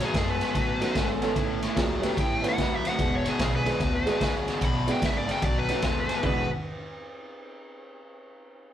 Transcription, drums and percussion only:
0.00 snare soft
0.00 ride medium
0.14 kick medium
0.14 snare loud
0.14 ride medium
0.41 snare soft
0.41 ride medium
0.55 kick medium
0.55 snare soft
0.55 ride medium
0.81 snare soft
0.81 ride medium
0.95 kick medium
0.95 snare loud
0.95 ride medium
1.22 snare soft
1.22 ride medium
1.36 kick medium
1.36 snare soft
1.36 ride medium
1.62 snare soft
1.62 ride medium
1.77 kick medium
1.77 snare loud
1.77 ride medium
2.03 snare soft
2.03 ride medium
2.17 kick medium
2.17 snare soft
2.17 ride medium
2.44 snare soft
2.44 ride medium
2.58 kick medium
2.58 snare loud
2.58 ride medium
2.85 snare soft
2.85 ride medium
2.99 kick medium
2.99 snare soft
2.99 ride medium
3.25 snare soft
3.25 ride medium
3.39 kick medium
3.39 snare loud
3.39 ride loud
3.66 snare soft
3.66 ride medium
3.80 kick medium
3.80 snare soft
3.80 ride medium
4.07 snare soft
4.07 ride medium
4.21 kick medium
4.21 snare loud
4.21 ride medium
4.48 snare soft
4.48 ride medium
4.61 kick medium
4.61 snare soft
4.61 ride medium
4.88 snare soft
4.88 ride medium
5.02 kick medium
5.02 snare loud
5.02 ride loud
5.29 snare soft
5.29 ride medium
5.42 kick medium
5.42 snare soft
5.42 ride medium
5.69 snare soft
5.69 ride medium
5.82 kick medium
5.82 snare loud
5.82 ride medium
6.09 snare soft
6.09 ride medium
6.23 kick medium
6.23 floor tom medium

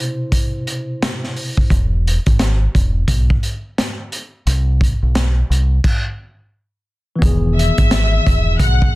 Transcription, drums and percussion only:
0.00 closed hi-hat medium
0.32 kick medium
0.32 closed hi-hat loud
0.67 closed hi-hat medium
1.02 snare loud
1.02 closed hi-hat loud
1.24 snare soft
1.36 open hi-hat medium
1.57 kick medium
1.70 kick loud
1.70 closed hi-hat medium
2.07 closed hi-hat medium
2.26 kick medium
2.26 closed hi-hat medium
2.39 snare loud
2.39 closed hi-hat medium
2.75 kick medium
2.75 closed hi-hat medium
3.08 kick medium
3.08 closed hi-hat loud
3.30 kick medium
3.43 closed hi-hat medium
3.78 snare loud
3.78 closed hi-hat loud
4.12 closed hi-hat medium
4.47 closed hi-hat medium
4.81 kick loud
4.81 closed hi-hat medium
5.15 snare loud
5.15 closed hi-hat medium
5.52 closed hi-hat medium
5.84 kick loud
5.84 crash medium
7.22 kick loud
7.22 closed hi-hat medium
7.59 closed hi-hat medium
7.78 kick medium
7.78 closed hi-hat medium
7.91 snare loud
7.91 closed hi-hat medium
8.27 kick medium
8.27 closed hi-hat medium
8.59 kick medium
8.59 closed hi-hat loud
8.82 kick loud

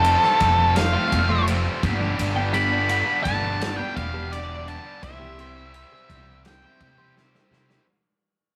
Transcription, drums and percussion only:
0.05 ride medium
0.23 snare soft
0.40 kick medium
0.40 ride medium
0.76 snare medium
0.76 ride medium
1.12 kick medium
1.12 ride medium
1.48 ride medium
1.83 kick medium
1.83 ride medium
2.19 ride medium
2.54 ride medium
2.89 ride medium
3.25 kick medium
3.25 ride medium
3.61 snare medium
3.61 ride medium
3.97 kick medium
3.97 ride medium
4.33 ride medium
4.68 ride medium
5.03 kick medium
5.03 ride medium
5.39 ride medium
5.74 ride medium
6.10 kick medium
6.10 ride medium
6.45 snare medium
6.45 ride medium
6.81 kick medium
6.81 ride soft
7.17 snare medium
7.35 snare medium
7.53 snare medium
7.70 snare medium

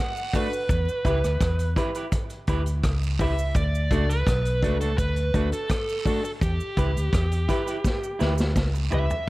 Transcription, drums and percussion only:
0.17 cabasa soft
0.33 kick medium
0.33 open hi-hat medium
0.33 cabasa soft
0.53 cabasa medium
0.69 kick loud
0.69 closed hi-hat medium
0.69 cabasa medium
0.89 cabasa medium
1.05 kick medium
1.05 closed hi-hat medium
1.05 cabasa soft
1.24 cross-stick medium
1.24 closed hi-hat soft
1.24 cabasa medium
1.41 kick loud
1.41 cross-stick loud
1.41 closed hi-hat medium
1.41 cabasa medium
1.59 closed hi-hat medium
1.59 cabasa medium
1.76 kick medium
1.76 closed hi-hat medium
1.76 cabasa soft
1.94 closed hi-hat medium
1.94 cabasa medium
2.12 kick loud
2.12 closed hi-hat medium
2.12 cabasa medium
2.30 closed hi-hat soft
2.30 cabasa soft
2.47 kick medium
2.47 closed hi-hat medium
2.47 cabasa medium
2.66 closed hi-hat medium
2.66 cabasa medium
2.83 kick loud
2.83 cross-stick loud
2.83 closed hi-hat medium
2.83 cabasa medium
2.83 long guiro medium
3.03 cabasa soft
3.19 kick medium
3.19 open hi-hat medium
3.19 cabasa medium
3.39 cabasa medium
3.54 kick loud
3.54 closed hi-hat medium
3.54 cabasa medium
3.75 cabasa medium
3.91 kick medium
3.91 closed hi-hat medium
3.91 cabasa soft
4.11 closed hi-hat soft
4.11 cabasa medium
4.27 kick loud
4.27 cross-stick loud
4.27 closed hi-hat medium
4.27 cabasa medium
4.45 closed hi-hat medium
4.45 cabasa medium
4.63 kick medium
4.63 closed hi-hat medium
4.63 cabasa medium
4.81 closed hi-hat medium
4.81 cabasa medium
4.98 kick loud
4.98 closed hi-hat medium
4.98 cabasa medium
5.16 closed hi-hat medium
5.16 cabasa soft
5.34 kick medium
5.34 closed hi-hat medium
5.34 cabasa medium
5.52 closed hi-hat medium
5.52 cabasa medium
5.69 kick medium
5.69 cross-stick loud
5.69 closed hi-hat medium
5.69 cabasa medium
5.69 long guiro medium
5.89 cabasa soft
6.05 kick medium
6.05 open hi-hat medium
6.05 cabasa soft
6.25 cabasa medium
6.41 kick loud
6.41 closed hi-hat medium
6.41 cabasa medium
6.60 cabasa medium
6.77 kick medium
6.77 closed hi-hat medium
6.77 cabasa medium
6.96 closed hi-hat soft
6.96 cabasa medium
7.13 kick loud
7.13 cross-stick loud
7.13 closed hi-hat medium
7.13 cabasa medium
7.31 closed hi-hat medium
7.31 cabasa medium
7.49 kick medium
7.49 closed hi-hat medium
7.49 cabasa medium
7.67 closed hi-hat medium
7.67 cabasa medium
7.84 kick medium
7.84 snare medium
7.84 cabasa medium
8.04 cabasa medium
8.20 snare medium
8.20 cabasa medium
8.38 snare medium
8.38 cabasa medium
8.56 kick medium
8.56 snare medium
8.56 cabasa medium
8.56 long guiro medium
8.75 cabasa medium
8.92 floor tom loud
8.92 cabasa medium
9.10 floor tom medium
9.10 cabasa medium

